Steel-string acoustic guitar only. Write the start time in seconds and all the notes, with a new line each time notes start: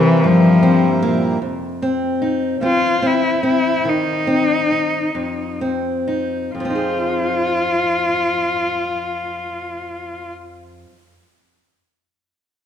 Already playing: A#3 C4 E4
0.24 G2
0.63 C4
1.02 A#3
1.42 F2
1.82 C4
2.22 D#4
2.61 E2 C4
3.02 C4
3.43 C4
3.85 D#3
4.27 C4
4.71 D#4
5.15 F2
5.61 C4
6.08 D#4
6.55 F2
6.60 F3
6.65 C4
6.70 D#4
6.75 G#4